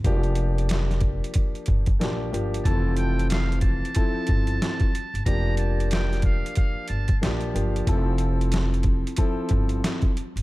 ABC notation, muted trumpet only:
X:1
M:4/4
L:1/8
Q:"Swing 16ths" 1/4=92
K:F
V:1 name="Muted trumpet"
z8 | a g f a4- a | b a g f f a z2 | z8 |]